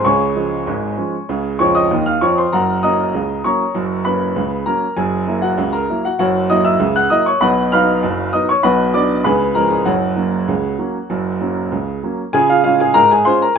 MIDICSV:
0, 0, Header, 1, 2, 480
1, 0, Start_track
1, 0, Key_signature, 6, "major"
1, 0, Tempo, 614754
1, 36, Time_signature, 2, 2, 24, 8
1, 10603, End_track
2, 0, Start_track
2, 0, Title_t, "Grand piano"
2, 0, Program_c, 0, 0
2, 0, Control_c, 0, 64, 127
2, 35, Note_on_c, 0, 85, 74
2, 36, Note_on_c, 0, 49, 75
2, 38, Note_on_c, 0, 37, 62
2, 43, Control_c, 0, 64, 0
2, 44, Note_on_c, 0, 73, 53
2, 46, Note_on_c, 0, 80, 57
2, 203, Control_c, 0, 64, 127
2, 242, Note_off_c, 0, 49, 0
2, 243, Note_off_c, 0, 37, 0
2, 277, Note_on_c, 0, 53, 41
2, 283, Note_on_c, 0, 56, 38
2, 287, Note_on_c, 0, 61, 43
2, 411, Note_off_c, 0, 53, 0
2, 414, Note_off_c, 0, 56, 0
2, 417, Note_off_c, 0, 61, 0
2, 521, Note_on_c, 0, 44, 60
2, 522, Note_on_c, 0, 32, 63
2, 526, Control_c, 0, 64, 0
2, 726, Note_off_c, 0, 44, 0
2, 727, Note_off_c, 0, 32, 0
2, 762, Note_on_c, 0, 53, 36
2, 764, Note_on_c, 0, 56, 37
2, 768, Note_on_c, 0, 61, 40
2, 895, Note_off_c, 0, 53, 0
2, 897, Note_off_c, 0, 56, 0
2, 900, Note_off_c, 0, 61, 0
2, 1007, Note_on_c, 0, 37, 61
2, 1007, Note_on_c, 0, 49, 66
2, 1154, Control_c, 0, 64, 127
2, 1211, Note_off_c, 0, 37, 0
2, 1211, Note_off_c, 0, 49, 0
2, 1230, Note_off_c, 0, 85, 0
2, 1239, Note_off_c, 0, 73, 0
2, 1241, Note_on_c, 0, 85, 71
2, 1247, Note_on_c, 0, 41, 59
2, 1247, Note_on_c, 0, 53, 56
2, 1251, Note_on_c, 0, 73, 54
2, 1361, Note_off_c, 0, 73, 0
2, 1364, Note_off_c, 0, 85, 0
2, 1366, Note_on_c, 0, 87, 76
2, 1374, Note_on_c, 0, 75, 52
2, 1427, Note_off_c, 0, 41, 0
2, 1428, Note_off_c, 0, 53, 0
2, 1460, Note_off_c, 0, 80, 0
2, 1488, Note_on_c, 0, 39, 60
2, 1490, Note_on_c, 0, 51, 62
2, 1498, Control_c, 0, 64, 0
2, 1594, Note_off_c, 0, 75, 0
2, 1607, Note_off_c, 0, 87, 0
2, 1609, Note_on_c, 0, 89, 66
2, 1619, Note_on_c, 0, 77, 49
2, 1669, Note_off_c, 0, 39, 0
2, 1670, Note_off_c, 0, 51, 0
2, 1726, Note_off_c, 0, 77, 0
2, 1728, Note_on_c, 0, 85, 70
2, 1729, Note_off_c, 0, 89, 0
2, 1731, Note_on_c, 0, 41, 59
2, 1731, Note_on_c, 0, 53, 60
2, 1737, Note_on_c, 0, 73, 48
2, 1845, Note_off_c, 0, 73, 0
2, 1849, Note_off_c, 0, 85, 0
2, 1859, Note_on_c, 0, 84, 69
2, 1868, Note_on_c, 0, 72, 50
2, 1912, Note_off_c, 0, 41, 0
2, 1912, Note_off_c, 0, 53, 0
2, 1972, Note_off_c, 0, 72, 0
2, 1972, Note_on_c, 0, 82, 68
2, 1974, Note_on_c, 0, 30, 54
2, 1975, Note_off_c, 0, 84, 0
2, 1977, Note_on_c, 0, 42, 64
2, 1983, Note_on_c, 0, 78, 56
2, 1985, Note_on_c, 0, 70, 49
2, 2128, Control_c, 0, 64, 127
2, 2177, Note_off_c, 0, 30, 0
2, 2179, Note_off_c, 0, 42, 0
2, 2201, Note_off_c, 0, 78, 0
2, 2202, Note_off_c, 0, 70, 0
2, 2207, Note_off_c, 0, 82, 0
2, 2209, Note_on_c, 0, 87, 69
2, 2213, Note_on_c, 0, 54, 38
2, 2215, Note_on_c, 0, 58, 35
2, 2217, Note_on_c, 0, 61, 42
2, 2218, Note_on_c, 0, 75, 50
2, 2219, Note_on_c, 0, 82, 57
2, 2344, Note_off_c, 0, 54, 0
2, 2345, Note_off_c, 0, 58, 0
2, 2347, Note_off_c, 0, 61, 0
2, 2452, Note_on_c, 0, 49, 54
2, 2453, Note_on_c, 0, 37, 54
2, 2460, Control_c, 0, 64, 0
2, 2654, Note_off_c, 0, 37, 0
2, 2654, Note_off_c, 0, 49, 0
2, 2661, Note_off_c, 0, 75, 0
2, 2661, Note_off_c, 0, 82, 0
2, 2688, Note_off_c, 0, 87, 0
2, 2689, Note_on_c, 0, 85, 62
2, 2692, Note_on_c, 0, 54, 36
2, 2693, Note_on_c, 0, 58, 36
2, 2695, Note_on_c, 0, 73, 47
2, 2696, Note_on_c, 0, 82, 45
2, 2697, Note_on_c, 0, 61, 36
2, 2822, Note_off_c, 0, 54, 0
2, 2823, Note_off_c, 0, 58, 0
2, 2826, Note_off_c, 0, 61, 0
2, 2926, Note_on_c, 0, 42, 61
2, 2927, Note_on_c, 0, 30, 57
2, 3104, Control_c, 0, 64, 127
2, 3129, Note_off_c, 0, 42, 0
2, 3130, Note_off_c, 0, 30, 0
2, 3138, Note_off_c, 0, 73, 0
2, 3138, Note_off_c, 0, 82, 0
2, 3161, Note_on_c, 0, 83, 73
2, 3166, Note_off_c, 0, 85, 0
2, 3167, Note_on_c, 0, 54, 33
2, 3170, Note_on_c, 0, 58, 30
2, 3171, Note_on_c, 0, 61, 39
2, 3173, Note_on_c, 0, 71, 52
2, 3297, Note_off_c, 0, 54, 0
2, 3300, Note_off_c, 0, 58, 0
2, 3300, Note_off_c, 0, 61, 0
2, 3402, Note_on_c, 0, 37, 55
2, 3404, Note_on_c, 0, 49, 59
2, 3409, Control_c, 0, 64, 0
2, 3605, Note_off_c, 0, 37, 0
2, 3606, Note_off_c, 0, 49, 0
2, 3614, Note_off_c, 0, 71, 0
2, 3638, Note_on_c, 0, 82, 71
2, 3639, Note_off_c, 0, 83, 0
2, 3640, Note_on_c, 0, 58, 35
2, 3641, Note_on_c, 0, 54, 36
2, 3645, Note_on_c, 0, 70, 57
2, 3646, Note_on_c, 0, 61, 42
2, 3771, Note_off_c, 0, 58, 0
2, 3772, Note_off_c, 0, 54, 0
2, 3775, Note_off_c, 0, 61, 0
2, 3865, Note_off_c, 0, 70, 0
2, 3877, Note_off_c, 0, 82, 0
2, 3877, Note_on_c, 0, 80, 75
2, 3878, Note_on_c, 0, 30, 64
2, 3881, Note_on_c, 0, 42, 61
2, 3883, Note_on_c, 0, 68, 52
2, 4051, Control_c, 0, 64, 127
2, 4081, Note_off_c, 0, 30, 0
2, 4083, Note_off_c, 0, 42, 0
2, 4116, Note_on_c, 0, 54, 39
2, 4119, Note_on_c, 0, 58, 38
2, 4122, Note_on_c, 0, 64, 40
2, 4214, Note_off_c, 0, 68, 0
2, 4231, Note_on_c, 0, 78, 64
2, 4235, Note_off_c, 0, 80, 0
2, 4239, Note_on_c, 0, 66, 52
2, 4247, Note_off_c, 0, 54, 0
2, 4250, Note_off_c, 0, 58, 0
2, 4252, Note_off_c, 0, 64, 0
2, 4353, Note_on_c, 0, 37, 64
2, 4353, Note_on_c, 0, 49, 62
2, 4365, Control_c, 0, 64, 0
2, 4459, Note_off_c, 0, 66, 0
2, 4471, Note_on_c, 0, 82, 70
2, 4472, Note_off_c, 0, 78, 0
2, 4480, Note_on_c, 0, 70, 54
2, 4556, Note_off_c, 0, 37, 0
2, 4556, Note_off_c, 0, 49, 0
2, 4602, Note_on_c, 0, 58, 37
2, 4603, Note_on_c, 0, 54, 38
2, 4607, Note_on_c, 0, 64, 42
2, 4699, Note_off_c, 0, 70, 0
2, 4710, Note_off_c, 0, 82, 0
2, 4723, Note_on_c, 0, 78, 67
2, 4730, Note_off_c, 0, 58, 0
2, 4730, Note_on_c, 0, 66, 46
2, 4731, Note_off_c, 0, 54, 0
2, 4734, Note_off_c, 0, 64, 0
2, 4822, Note_off_c, 0, 78, 0
2, 4829, Note_off_c, 0, 66, 0
2, 4834, Note_on_c, 0, 78, 70
2, 4835, Note_on_c, 0, 42, 73
2, 4836, Note_on_c, 0, 30, 63
2, 4840, Note_on_c, 0, 66, 58
2, 4840, Note_on_c, 0, 73, 56
2, 4963, Control_c, 0, 64, 127
2, 5035, Note_off_c, 0, 42, 0
2, 5036, Note_off_c, 0, 30, 0
2, 5057, Note_off_c, 0, 66, 0
2, 5057, Note_off_c, 0, 73, 0
2, 5070, Note_off_c, 0, 78, 0
2, 5073, Note_on_c, 0, 54, 44
2, 5073, Note_on_c, 0, 87, 77
2, 5078, Note_on_c, 0, 58, 44
2, 5078, Note_on_c, 0, 75, 64
2, 5082, Note_on_c, 0, 64, 46
2, 5184, Note_off_c, 0, 75, 0
2, 5189, Note_off_c, 0, 87, 0
2, 5189, Note_on_c, 0, 88, 76
2, 5194, Note_on_c, 0, 76, 52
2, 5202, Note_off_c, 0, 54, 0
2, 5206, Note_off_c, 0, 58, 0
2, 5208, Note_off_c, 0, 64, 0
2, 5303, Note_on_c, 0, 37, 69
2, 5305, Note_on_c, 0, 49, 72
2, 5313, Control_c, 0, 64, 0
2, 5411, Note_off_c, 0, 76, 0
2, 5425, Note_off_c, 0, 88, 0
2, 5432, Note_on_c, 0, 90, 78
2, 5440, Note_on_c, 0, 78, 57
2, 5506, Note_off_c, 0, 37, 0
2, 5507, Note_off_c, 0, 49, 0
2, 5543, Note_off_c, 0, 78, 0
2, 5544, Note_on_c, 0, 87, 79
2, 5546, Note_on_c, 0, 54, 41
2, 5547, Note_off_c, 0, 90, 0
2, 5551, Note_on_c, 0, 58, 38
2, 5554, Note_on_c, 0, 75, 66
2, 5555, Note_on_c, 0, 64, 48
2, 5660, Note_off_c, 0, 75, 0
2, 5663, Note_off_c, 0, 87, 0
2, 5670, Note_on_c, 0, 85, 68
2, 5677, Note_off_c, 0, 54, 0
2, 5678, Note_on_c, 0, 73, 53
2, 5681, Note_off_c, 0, 58, 0
2, 5684, Note_off_c, 0, 64, 0
2, 5783, Note_off_c, 0, 73, 0
2, 5784, Note_on_c, 0, 83, 88
2, 5787, Note_off_c, 0, 85, 0
2, 5788, Note_on_c, 0, 47, 76
2, 5789, Note_on_c, 0, 35, 65
2, 5793, Note_on_c, 0, 78, 69
2, 5796, Note_on_c, 0, 71, 66
2, 5935, Control_c, 0, 64, 127
2, 5990, Note_off_c, 0, 47, 0
2, 5991, Note_off_c, 0, 35, 0
2, 6012, Note_off_c, 0, 78, 0
2, 6013, Note_off_c, 0, 71, 0
2, 6024, Note_off_c, 0, 83, 0
2, 6028, Note_on_c, 0, 89, 88
2, 6033, Note_on_c, 0, 54, 49
2, 6035, Note_on_c, 0, 59, 48
2, 6037, Note_on_c, 0, 63, 55
2, 6039, Note_on_c, 0, 77, 62
2, 6039, Note_on_c, 0, 83, 67
2, 6162, Note_off_c, 0, 54, 0
2, 6163, Note_off_c, 0, 59, 0
2, 6165, Note_off_c, 0, 63, 0
2, 6269, Note_on_c, 0, 42, 69
2, 6273, Note_on_c, 0, 30, 69
2, 6274, Control_c, 0, 64, 0
2, 6469, Note_off_c, 0, 42, 0
2, 6471, Note_off_c, 0, 30, 0
2, 6477, Note_off_c, 0, 83, 0
2, 6478, Note_off_c, 0, 77, 0
2, 6503, Note_on_c, 0, 87, 74
2, 6504, Note_off_c, 0, 89, 0
2, 6505, Note_on_c, 0, 54, 45
2, 6510, Note_on_c, 0, 59, 42
2, 6510, Note_on_c, 0, 63, 47
2, 6513, Note_on_c, 0, 75, 54
2, 6618, Note_off_c, 0, 75, 0
2, 6621, Note_off_c, 0, 87, 0
2, 6629, Note_on_c, 0, 85, 79
2, 6635, Note_off_c, 0, 54, 0
2, 6637, Note_on_c, 0, 73, 62
2, 6638, Note_off_c, 0, 59, 0
2, 6638, Note_off_c, 0, 63, 0
2, 6740, Note_off_c, 0, 73, 0
2, 6740, Note_on_c, 0, 83, 87
2, 6744, Note_off_c, 0, 85, 0
2, 6744, Note_on_c, 0, 35, 74
2, 6745, Note_on_c, 0, 47, 71
2, 6749, Note_on_c, 0, 78, 63
2, 6753, Note_on_c, 0, 71, 66
2, 6877, Control_c, 0, 64, 127
2, 6945, Note_off_c, 0, 35, 0
2, 6945, Note_off_c, 0, 47, 0
2, 6966, Note_off_c, 0, 78, 0
2, 6969, Note_off_c, 0, 71, 0
2, 6979, Note_off_c, 0, 83, 0
2, 6980, Note_on_c, 0, 86, 84
2, 6982, Note_on_c, 0, 54, 47
2, 6984, Note_on_c, 0, 59, 45
2, 6986, Note_on_c, 0, 74, 65
2, 6990, Note_on_c, 0, 62, 44
2, 7113, Note_off_c, 0, 54, 0
2, 7115, Note_off_c, 0, 59, 0
2, 7119, Note_off_c, 0, 62, 0
2, 7205, Note_off_c, 0, 74, 0
2, 7218, Note_on_c, 0, 83, 81
2, 7219, Note_off_c, 0, 86, 0
2, 7221, Note_on_c, 0, 49, 77
2, 7222, Note_on_c, 0, 37, 65
2, 7227, Note_on_c, 0, 71, 65
2, 7227, Note_on_c, 0, 80, 64
2, 7229, Control_c, 0, 64, 0
2, 7364, Control_c, 0, 64, 127
2, 7425, Note_off_c, 0, 37, 0
2, 7425, Note_off_c, 0, 49, 0
2, 7447, Note_off_c, 0, 71, 0
2, 7447, Note_off_c, 0, 80, 0
2, 7455, Note_on_c, 0, 82, 69
2, 7459, Note_off_c, 0, 83, 0
2, 7460, Note_on_c, 0, 53, 42
2, 7462, Note_on_c, 0, 56, 40
2, 7462, Note_on_c, 0, 70, 60
2, 7466, Note_on_c, 0, 61, 40
2, 7573, Note_off_c, 0, 70, 0
2, 7577, Note_on_c, 0, 80, 65
2, 7578, Note_off_c, 0, 82, 0
2, 7586, Note_on_c, 0, 68, 51
2, 7592, Note_off_c, 0, 53, 0
2, 7594, Note_off_c, 0, 56, 0
2, 7597, Note_off_c, 0, 61, 0
2, 7692, Note_on_c, 0, 78, 67
2, 7695, Note_off_c, 0, 68, 0
2, 7696, Note_on_c, 0, 42, 62
2, 7697, Note_on_c, 0, 30, 58
2, 7699, Note_off_c, 0, 80, 0
2, 7702, Note_on_c, 0, 66, 51
2, 7702, Note_on_c, 0, 73, 48
2, 7709, Control_c, 0, 64, 0
2, 7863, Control_c, 0, 64, 127
2, 7904, Note_off_c, 0, 30, 0
2, 7904, Note_off_c, 0, 42, 0
2, 7933, Note_on_c, 0, 54, 36
2, 7936, Note_on_c, 0, 58, 35
2, 7939, Note_on_c, 0, 61, 41
2, 8069, Note_off_c, 0, 54, 0
2, 8071, Note_off_c, 0, 58, 0
2, 8073, Note_off_c, 0, 61, 0
2, 8179, Note_on_c, 0, 49, 56
2, 8183, Note_on_c, 0, 37, 57
2, 8194, Control_c, 0, 64, 0
2, 8387, Note_off_c, 0, 49, 0
2, 8389, Note_off_c, 0, 37, 0
2, 8422, Note_on_c, 0, 54, 39
2, 8422, Note_on_c, 0, 58, 35
2, 8430, Note_on_c, 0, 61, 39
2, 8556, Note_off_c, 0, 54, 0
2, 8557, Note_off_c, 0, 58, 0
2, 8562, Note_off_c, 0, 61, 0
2, 8666, Note_on_c, 0, 42, 58
2, 8667, Note_on_c, 0, 30, 57
2, 8804, Control_c, 0, 64, 127
2, 8872, Note_off_c, 0, 42, 0
2, 8873, Note_off_c, 0, 30, 0
2, 8906, Note_on_c, 0, 54, 35
2, 8911, Note_on_c, 0, 58, 34
2, 8911, Note_on_c, 0, 61, 38
2, 9040, Note_off_c, 0, 54, 0
2, 9043, Note_off_c, 0, 58, 0
2, 9044, Note_off_c, 0, 61, 0
2, 9121, Note_off_c, 0, 66, 0
2, 9121, Note_off_c, 0, 73, 0
2, 9147, Note_off_c, 0, 78, 0
2, 9147, Note_on_c, 0, 37, 52
2, 9149, Note_on_c, 0, 49, 56
2, 9158, Control_c, 0, 64, 0
2, 9354, Note_off_c, 0, 37, 0
2, 9355, Note_off_c, 0, 49, 0
2, 9395, Note_on_c, 0, 54, 35
2, 9396, Note_on_c, 0, 58, 37
2, 9401, Note_on_c, 0, 61, 36
2, 9527, Note_off_c, 0, 54, 0
2, 9528, Note_off_c, 0, 58, 0
2, 9532, Note_off_c, 0, 61, 0
2, 9628, Note_on_c, 0, 80, 109
2, 9632, Note_on_c, 0, 49, 89
2, 9638, Note_on_c, 0, 68, 76
2, 9645, Note_on_c, 0, 65, 58
2, 9748, Note_off_c, 0, 68, 0
2, 9751, Note_off_c, 0, 65, 0
2, 9752, Note_off_c, 0, 80, 0
2, 9756, Note_on_c, 0, 77, 86
2, 9763, Note_on_c, 0, 65, 65
2, 9778, Control_c, 0, 64, 127
2, 9838, Note_off_c, 0, 49, 0
2, 9856, Note_off_c, 0, 77, 0
2, 9864, Note_off_c, 0, 65, 0
2, 9868, Note_on_c, 0, 77, 89
2, 9870, Note_on_c, 0, 56, 51
2, 9874, Note_on_c, 0, 61, 43
2, 9876, Note_on_c, 0, 65, 65
2, 9987, Note_off_c, 0, 65, 0
2, 9991, Note_off_c, 0, 77, 0
2, 9997, Note_on_c, 0, 80, 85
2, 10003, Note_off_c, 0, 56, 0
2, 10003, Note_on_c, 0, 68, 67
2, 10006, Note_off_c, 0, 61, 0
2, 10104, Note_on_c, 0, 82, 112
2, 10107, Note_on_c, 0, 44, 75
2, 10111, Note_off_c, 0, 68, 0
2, 10113, Note_on_c, 0, 70, 80
2, 10116, Note_off_c, 0, 80, 0
2, 10124, Control_c, 0, 64, 0
2, 10226, Note_off_c, 0, 70, 0
2, 10229, Note_off_c, 0, 82, 0
2, 10239, Note_on_c, 0, 80, 80
2, 10249, Note_on_c, 0, 68, 65
2, 10314, Note_off_c, 0, 44, 0
2, 10346, Note_on_c, 0, 84, 97
2, 10352, Note_on_c, 0, 56, 51
2, 10353, Note_on_c, 0, 61, 52
2, 10354, Note_off_c, 0, 68, 0
2, 10355, Note_on_c, 0, 65, 56
2, 10357, Note_off_c, 0, 80, 0
2, 10358, Note_on_c, 0, 72, 77
2, 10467, Note_off_c, 0, 72, 0
2, 10470, Note_off_c, 0, 84, 0
2, 10480, Note_on_c, 0, 82, 78
2, 10484, Note_off_c, 0, 56, 0
2, 10485, Note_off_c, 0, 61, 0
2, 10487, Note_off_c, 0, 65, 0
2, 10490, Note_on_c, 0, 70, 58
2, 10594, Note_off_c, 0, 70, 0
2, 10597, Note_off_c, 0, 82, 0
2, 10603, End_track
0, 0, End_of_file